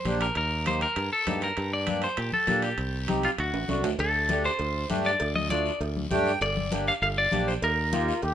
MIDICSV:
0, 0, Header, 1, 6, 480
1, 0, Start_track
1, 0, Tempo, 302725
1, 568, Time_signature, 4, 2, 24, 8
1, 13224, End_track
2, 0, Start_track
2, 0, Title_t, "Clean electric guitar"
2, 0, Program_c, 0, 27
2, 0, Note_on_c, 0, 72, 92
2, 272, Note_off_c, 0, 72, 0
2, 345, Note_on_c, 0, 70, 64
2, 570, Note_off_c, 0, 70, 0
2, 589, Note_on_c, 0, 70, 91
2, 1026, Note_off_c, 0, 70, 0
2, 1067, Note_on_c, 0, 72, 87
2, 1282, Note_off_c, 0, 72, 0
2, 1305, Note_on_c, 0, 70, 87
2, 1744, Note_off_c, 0, 70, 0
2, 1785, Note_on_c, 0, 69, 84
2, 2269, Note_off_c, 0, 69, 0
2, 2275, Note_on_c, 0, 70, 69
2, 2744, Note_off_c, 0, 70, 0
2, 2750, Note_on_c, 0, 74, 94
2, 3224, Note_off_c, 0, 74, 0
2, 3230, Note_on_c, 0, 72, 79
2, 3446, Note_off_c, 0, 72, 0
2, 3460, Note_on_c, 0, 67, 77
2, 3697, Note_off_c, 0, 67, 0
2, 3703, Note_on_c, 0, 69, 88
2, 4186, Note_off_c, 0, 69, 0
2, 4192, Note_on_c, 0, 67, 68
2, 5080, Note_off_c, 0, 67, 0
2, 5148, Note_on_c, 0, 65, 77
2, 5227, Note_off_c, 0, 65, 0
2, 5388, Note_on_c, 0, 66, 77
2, 6051, Note_off_c, 0, 66, 0
2, 6344, Note_on_c, 0, 69, 89
2, 7009, Note_off_c, 0, 69, 0
2, 7062, Note_on_c, 0, 72, 92
2, 7728, Note_off_c, 0, 72, 0
2, 8026, Note_on_c, 0, 74, 80
2, 8485, Note_off_c, 0, 74, 0
2, 8492, Note_on_c, 0, 75, 116
2, 8720, Note_off_c, 0, 75, 0
2, 8726, Note_on_c, 0, 74, 92
2, 9175, Note_off_c, 0, 74, 0
2, 10183, Note_on_c, 0, 74, 110
2, 10847, Note_off_c, 0, 74, 0
2, 10912, Note_on_c, 0, 77, 104
2, 10991, Note_off_c, 0, 77, 0
2, 11139, Note_on_c, 0, 77, 113
2, 11218, Note_off_c, 0, 77, 0
2, 11386, Note_on_c, 0, 74, 113
2, 11860, Note_on_c, 0, 72, 70
2, 11872, Note_off_c, 0, 74, 0
2, 11939, Note_off_c, 0, 72, 0
2, 12109, Note_on_c, 0, 70, 96
2, 12994, Note_off_c, 0, 70, 0
2, 13224, End_track
3, 0, Start_track
3, 0, Title_t, "Trombone"
3, 0, Program_c, 1, 57
3, 12571, Note_on_c, 1, 65, 98
3, 13043, Note_on_c, 1, 67, 102
3, 13067, Note_off_c, 1, 65, 0
3, 13224, Note_off_c, 1, 67, 0
3, 13224, End_track
4, 0, Start_track
4, 0, Title_t, "Accordion"
4, 0, Program_c, 2, 21
4, 82, Note_on_c, 2, 58, 84
4, 85, Note_on_c, 2, 62, 79
4, 95, Note_on_c, 2, 67, 94
4, 421, Note_off_c, 2, 58, 0
4, 422, Note_off_c, 2, 62, 0
4, 427, Note_off_c, 2, 67, 0
4, 1038, Note_on_c, 2, 58, 75
4, 1045, Note_on_c, 2, 63, 66
4, 1055, Note_on_c, 2, 67, 75
4, 1380, Note_off_c, 2, 58, 0
4, 1383, Note_off_c, 2, 63, 0
4, 1388, Note_off_c, 2, 67, 0
4, 2005, Note_on_c, 2, 58, 74
4, 2005, Note_on_c, 2, 63, 66
4, 2014, Note_on_c, 2, 67, 76
4, 2344, Note_off_c, 2, 58, 0
4, 2344, Note_off_c, 2, 63, 0
4, 2349, Note_off_c, 2, 67, 0
4, 2964, Note_on_c, 2, 58, 75
4, 2972, Note_on_c, 2, 62, 67
4, 2976, Note_on_c, 2, 67, 77
4, 3304, Note_off_c, 2, 58, 0
4, 3308, Note_off_c, 2, 62, 0
4, 3310, Note_off_c, 2, 67, 0
4, 3929, Note_on_c, 2, 58, 81
4, 3932, Note_on_c, 2, 62, 74
4, 3938, Note_on_c, 2, 67, 84
4, 4268, Note_off_c, 2, 58, 0
4, 4269, Note_off_c, 2, 62, 0
4, 4272, Note_off_c, 2, 67, 0
4, 4880, Note_on_c, 2, 60, 86
4, 4884, Note_on_c, 2, 63, 80
4, 4897, Note_on_c, 2, 67, 93
4, 5223, Note_off_c, 2, 60, 0
4, 5225, Note_off_c, 2, 63, 0
4, 5232, Note_off_c, 2, 67, 0
4, 5835, Note_on_c, 2, 57, 74
4, 5843, Note_on_c, 2, 62, 72
4, 5849, Note_on_c, 2, 66, 80
4, 6181, Note_off_c, 2, 57, 0
4, 6184, Note_off_c, 2, 62, 0
4, 6188, Note_off_c, 2, 66, 0
4, 6809, Note_on_c, 2, 57, 77
4, 6816, Note_on_c, 2, 62, 69
4, 6822, Note_on_c, 2, 67, 83
4, 7148, Note_off_c, 2, 57, 0
4, 7151, Note_off_c, 2, 62, 0
4, 7154, Note_off_c, 2, 67, 0
4, 7749, Note_on_c, 2, 57, 88
4, 7761, Note_on_c, 2, 62, 92
4, 7768, Note_on_c, 2, 67, 100
4, 8097, Note_off_c, 2, 57, 0
4, 8103, Note_off_c, 2, 62, 0
4, 8107, Note_off_c, 2, 67, 0
4, 8715, Note_on_c, 2, 57, 71
4, 8725, Note_on_c, 2, 62, 63
4, 8729, Note_on_c, 2, 65, 84
4, 9060, Note_off_c, 2, 57, 0
4, 9065, Note_off_c, 2, 62, 0
4, 9067, Note_off_c, 2, 65, 0
4, 9680, Note_on_c, 2, 57, 97
4, 9691, Note_on_c, 2, 62, 83
4, 9691, Note_on_c, 2, 67, 109
4, 9691, Note_on_c, 2, 79, 80
4, 10022, Note_off_c, 2, 57, 0
4, 10027, Note_off_c, 2, 62, 0
4, 10027, Note_off_c, 2, 67, 0
4, 10138, Note_off_c, 2, 79, 0
4, 10637, Note_on_c, 2, 58, 79
4, 10645, Note_on_c, 2, 62, 70
4, 10652, Note_on_c, 2, 67, 81
4, 10979, Note_off_c, 2, 58, 0
4, 10984, Note_off_c, 2, 62, 0
4, 10987, Note_off_c, 2, 67, 0
4, 11596, Note_on_c, 2, 58, 77
4, 11604, Note_on_c, 2, 62, 69
4, 11615, Note_on_c, 2, 67, 84
4, 11939, Note_off_c, 2, 58, 0
4, 11943, Note_off_c, 2, 62, 0
4, 11948, Note_off_c, 2, 67, 0
4, 12562, Note_on_c, 2, 58, 75
4, 12568, Note_on_c, 2, 63, 69
4, 12574, Note_on_c, 2, 67, 82
4, 12901, Note_off_c, 2, 58, 0
4, 12904, Note_off_c, 2, 63, 0
4, 12907, Note_off_c, 2, 67, 0
4, 13224, End_track
5, 0, Start_track
5, 0, Title_t, "Fingered electric bass"
5, 0, Program_c, 3, 33
5, 83, Note_on_c, 3, 34, 78
5, 469, Note_off_c, 3, 34, 0
5, 566, Note_on_c, 3, 39, 93
5, 1336, Note_off_c, 3, 39, 0
5, 1531, Note_on_c, 3, 43, 89
5, 1723, Note_off_c, 3, 43, 0
5, 2014, Note_on_c, 3, 43, 80
5, 2397, Note_off_c, 3, 43, 0
5, 2497, Note_on_c, 3, 43, 101
5, 3264, Note_off_c, 3, 43, 0
5, 3452, Note_on_c, 3, 46, 86
5, 3644, Note_off_c, 3, 46, 0
5, 3921, Note_on_c, 3, 46, 82
5, 4310, Note_off_c, 3, 46, 0
5, 4406, Note_on_c, 3, 36, 91
5, 5177, Note_off_c, 3, 36, 0
5, 5366, Note_on_c, 3, 38, 88
5, 5561, Note_off_c, 3, 38, 0
5, 5603, Note_on_c, 3, 33, 68
5, 5824, Note_off_c, 3, 33, 0
5, 5846, Note_on_c, 3, 36, 71
5, 6066, Note_off_c, 3, 36, 0
5, 6081, Note_on_c, 3, 38, 72
5, 6303, Note_off_c, 3, 38, 0
5, 6322, Note_on_c, 3, 38, 100
5, 7095, Note_off_c, 3, 38, 0
5, 7286, Note_on_c, 3, 38, 97
5, 7673, Note_off_c, 3, 38, 0
5, 7768, Note_on_c, 3, 43, 85
5, 8154, Note_off_c, 3, 43, 0
5, 8260, Note_on_c, 3, 38, 94
5, 9025, Note_off_c, 3, 38, 0
5, 9205, Note_on_c, 3, 38, 95
5, 9592, Note_off_c, 3, 38, 0
5, 9681, Note_on_c, 3, 43, 93
5, 10069, Note_off_c, 3, 43, 0
5, 10167, Note_on_c, 3, 31, 98
5, 10936, Note_off_c, 3, 31, 0
5, 11129, Note_on_c, 3, 31, 92
5, 11513, Note_off_c, 3, 31, 0
5, 11610, Note_on_c, 3, 34, 85
5, 11993, Note_off_c, 3, 34, 0
5, 12086, Note_on_c, 3, 39, 103
5, 12855, Note_off_c, 3, 39, 0
5, 13051, Note_on_c, 3, 39, 95
5, 13224, Note_off_c, 3, 39, 0
5, 13224, End_track
6, 0, Start_track
6, 0, Title_t, "Drums"
6, 86, Note_on_c, 9, 65, 56
6, 86, Note_on_c, 9, 73, 61
6, 87, Note_on_c, 9, 63, 77
6, 244, Note_off_c, 9, 65, 0
6, 245, Note_off_c, 9, 63, 0
6, 245, Note_off_c, 9, 73, 0
6, 323, Note_on_c, 9, 73, 69
6, 329, Note_on_c, 9, 65, 69
6, 481, Note_off_c, 9, 73, 0
6, 487, Note_off_c, 9, 65, 0
6, 560, Note_on_c, 9, 65, 63
6, 569, Note_on_c, 9, 74, 70
6, 718, Note_off_c, 9, 65, 0
6, 727, Note_off_c, 9, 74, 0
6, 1046, Note_on_c, 9, 65, 71
6, 1053, Note_on_c, 9, 63, 75
6, 1053, Note_on_c, 9, 73, 69
6, 1205, Note_off_c, 9, 65, 0
6, 1212, Note_off_c, 9, 63, 0
6, 1212, Note_off_c, 9, 73, 0
6, 1287, Note_on_c, 9, 65, 55
6, 1287, Note_on_c, 9, 73, 58
6, 1445, Note_off_c, 9, 65, 0
6, 1446, Note_off_c, 9, 73, 0
6, 1525, Note_on_c, 9, 65, 71
6, 1526, Note_on_c, 9, 74, 74
6, 1684, Note_off_c, 9, 65, 0
6, 1684, Note_off_c, 9, 74, 0
6, 2007, Note_on_c, 9, 73, 68
6, 2013, Note_on_c, 9, 63, 77
6, 2013, Note_on_c, 9, 65, 67
6, 2013, Note_on_c, 9, 66, 61
6, 2165, Note_off_c, 9, 73, 0
6, 2171, Note_off_c, 9, 63, 0
6, 2171, Note_off_c, 9, 65, 0
6, 2171, Note_off_c, 9, 66, 0
6, 2240, Note_on_c, 9, 73, 61
6, 2252, Note_on_c, 9, 65, 61
6, 2399, Note_off_c, 9, 73, 0
6, 2410, Note_off_c, 9, 65, 0
6, 2485, Note_on_c, 9, 65, 58
6, 2493, Note_on_c, 9, 74, 68
6, 2644, Note_off_c, 9, 65, 0
6, 2652, Note_off_c, 9, 74, 0
6, 2960, Note_on_c, 9, 65, 75
6, 2971, Note_on_c, 9, 63, 84
6, 2976, Note_on_c, 9, 73, 68
6, 3119, Note_off_c, 9, 65, 0
6, 3130, Note_off_c, 9, 63, 0
6, 3135, Note_off_c, 9, 73, 0
6, 3198, Note_on_c, 9, 65, 62
6, 3212, Note_on_c, 9, 73, 60
6, 3357, Note_off_c, 9, 65, 0
6, 3370, Note_off_c, 9, 73, 0
6, 3443, Note_on_c, 9, 65, 70
6, 3446, Note_on_c, 9, 74, 68
6, 3602, Note_off_c, 9, 65, 0
6, 3604, Note_off_c, 9, 74, 0
6, 3684, Note_on_c, 9, 63, 60
6, 3842, Note_off_c, 9, 63, 0
6, 3922, Note_on_c, 9, 65, 63
6, 3926, Note_on_c, 9, 73, 75
6, 3931, Note_on_c, 9, 63, 73
6, 4081, Note_off_c, 9, 65, 0
6, 4084, Note_off_c, 9, 73, 0
6, 4089, Note_off_c, 9, 63, 0
6, 4161, Note_on_c, 9, 65, 59
6, 4172, Note_on_c, 9, 73, 68
6, 4319, Note_off_c, 9, 65, 0
6, 4330, Note_off_c, 9, 73, 0
6, 4403, Note_on_c, 9, 65, 58
6, 4419, Note_on_c, 9, 74, 68
6, 4561, Note_off_c, 9, 65, 0
6, 4577, Note_off_c, 9, 74, 0
6, 4886, Note_on_c, 9, 65, 68
6, 4891, Note_on_c, 9, 63, 82
6, 4891, Note_on_c, 9, 73, 68
6, 5044, Note_off_c, 9, 65, 0
6, 5049, Note_off_c, 9, 63, 0
6, 5050, Note_off_c, 9, 73, 0
6, 5128, Note_on_c, 9, 65, 59
6, 5133, Note_on_c, 9, 73, 64
6, 5287, Note_off_c, 9, 65, 0
6, 5291, Note_off_c, 9, 73, 0
6, 5367, Note_on_c, 9, 65, 69
6, 5374, Note_on_c, 9, 74, 70
6, 5526, Note_off_c, 9, 65, 0
6, 5532, Note_off_c, 9, 74, 0
6, 5609, Note_on_c, 9, 65, 77
6, 5767, Note_off_c, 9, 65, 0
6, 5841, Note_on_c, 9, 63, 80
6, 5848, Note_on_c, 9, 65, 63
6, 5851, Note_on_c, 9, 73, 66
6, 6000, Note_off_c, 9, 63, 0
6, 6007, Note_off_c, 9, 65, 0
6, 6009, Note_off_c, 9, 73, 0
6, 6086, Note_on_c, 9, 73, 63
6, 6089, Note_on_c, 9, 66, 77
6, 6245, Note_off_c, 9, 73, 0
6, 6247, Note_off_c, 9, 66, 0
6, 6328, Note_on_c, 9, 56, 93
6, 6328, Note_on_c, 9, 63, 30
6, 6331, Note_on_c, 9, 74, 71
6, 6487, Note_off_c, 9, 56, 0
6, 6487, Note_off_c, 9, 63, 0
6, 6490, Note_off_c, 9, 74, 0
6, 6800, Note_on_c, 9, 56, 75
6, 6803, Note_on_c, 9, 73, 67
6, 6807, Note_on_c, 9, 63, 91
6, 6959, Note_off_c, 9, 56, 0
6, 6962, Note_off_c, 9, 73, 0
6, 6965, Note_off_c, 9, 63, 0
6, 7047, Note_on_c, 9, 73, 59
6, 7206, Note_off_c, 9, 73, 0
6, 7275, Note_on_c, 9, 56, 80
6, 7288, Note_on_c, 9, 74, 78
6, 7298, Note_on_c, 9, 63, 33
6, 7434, Note_off_c, 9, 56, 0
6, 7446, Note_off_c, 9, 74, 0
6, 7456, Note_off_c, 9, 63, 0
6, 7762, Note_on_c, 9, 56, 67
6, 7764, Note_on_c, 9, 73, 73
6, 7780, Note_on_c, 9, 63, 89
6, 7921, Note_off_c, 9, 56, 0
6, 7922, Note_off_c, 9, 73, 0
6, 7939, Note_off_c, 9, 63, 0
6, 8003, Note_on_c, 9, 73, 63
6, 8162, Note_off_c, 9, 73, 0
6, 8242, Note_on_c, 9, 56, 105
6, 8244, Note_on_c, 9, 74, 70
6, 8258, Note_on_c, 9, 63, 33
6, 8400, Note_off_c, 9, 56, 0
6, 8402, Note_off_c, 9, 74, 0
6, 8417, Note_off_c, 9, 63, 0
6, 8490, Note_on_c, 9, 63, 74
6, 8648, Note_off_c, 9, 63, 0
6, 8721, Note_on_c, 9, 73, 66
6, 8725, Note_on_c, 9, 63, 93
6, 8736, Note_on_c, 9, 56, 78
6, 8879, Note_off_c, 9, 73, 0
6, 8884, Note_off_c, 9, 63, 0
6, 8895, Note_off_c, 9, 56, 0
6, 8967, Note_on_c, 9, 73, 58
6, 9126, Note_off_c, 9, 73, 0
6, 9206, Note_on_c, 9, 74, 66
6, 9207, Note_on_c, 9, 63, 36
6, 9213, Note_on_c, 9, 56, 88
6, 9365, Note_off_c, 9, 74, 0
6, 9366, Note_off_c, 9, 63, 0
6, 9372, Note_off_c, 9, 56, 0
6, 9456, Note_on_c, 9, 63, 65
6, 9615, Note_off_c, 9, 63, 0
6, 9680, Note_on_c, 9, 73, 71
6, 9692, Note_on_c, 9, 63, 76
6, 9692, Note_on_c, 9, 64, 84
6, 9693, Note_on_c, 9, 56, 66
6, 9839, Note_off_c, 9, 73, 0
6, 9851, Note_off_c, 9, 56, 0
6, 9851, Note_off_c, 9, 63, 0
6, 9851, Note_off_c, 9, 64, 0
6, 9912, Note_on_c, 9, 73, 70
6, 10071, Note_off_c, 9, 73, 0
6, 10162, Note_on_c, 9, 74, 75
6, 10174, Note_on_c, 9, 56, 98
6, 10178, Note_on_c, 9, 63, 31
6, 10320, Note_off_c, 9, 74, 0
6, 10333, Note_off_c, 9, 56, 0
6, 10336, Note_off_c, 9, 63, 0
6, 10409, Note_on_c, 9, 63, 66
6, 10568, Note_off_c, 9, 63, 0
6, 10652, Note_on_c, 9, 73, 70
6, 10654, Note_on_c, 9, 63, 95
6, 10662, Note_on_c, 9, 56, 76
6, 10811, Note_off_c, 9, 73, 0
6, 10812, Note_off_c, 9, 63, 0
6, 10820, Note_off_c, 9, 56, 0
6, 10900, Note_on_c, 9, 73, 67
6, 11058, Note_off_c, 9, 73, 0
6, 11133, Note_on_c, 9, 74, 72
6, 11134, Note_on_c, 9, 63, 36
6, 11145, Note_on_c, 9, 56, 87
6, 11292, Note_off_c, 9, 63, 0
6, 11292, Note_off_c, 9, 74, 0
6, 11304, Note_off_c, 9, 56, 0
6, 11602, Note_on_c, 9, 63, 79
6, 11611, Note_on_c, 9, 73, 70
6, 11622, Note_on_c, 9, 56, 66
6, 11761, Note_off_c, 9, 63, 0
6, 11769, Note_off_c, 9, 73, 0
6, 11781, Note_off_c, 9, 56, 0
6, 11861, Note_on_c, 9, 73, 66
6, 12020, Note_off_c, 9, 73, 0
6, 12086, Note_on_c, 9, 63, 31
6, 12090, Note_on_c, 9, 56, 99
6, 12095, Note_on_c, 9, 74, 72
6, 12245, Note_off_c, 9, 63, 0
6, 12249, Note_off_c, 9, 56, 0
6, 12254, Note_off_c, 9, 74, 0
6, 12568, Note_on_c, 9, 56, 77
6, 12570, Note_on_c, 9, 63, 96
6, 12573, Note_on_c, 9, 73, 76
6, 12727, Note_off_c, 9, 56, 0
6, 12729, Note_off_c, 9, 63, 0
6, 12731, Note_off_c, 9, 73, 0
6, 12815, Note_on_c, 9, 73, 73
6, 12974, Note_off_c, 9, 73, 0
6, 13041, Note_on_c, 9, 56, 88
6, 13049, Note_on_c, 9, 74, 73
6, 13051, Note_on_c, 9, 63, 33
6, 13200, Note_off_c, 9, 56, 0
6, 13208, Note_off_c, 9, 74, 0
6, 13209, Note_off_c, 9, 63, 0
6, 13224, End_track
0, 0, End_of_file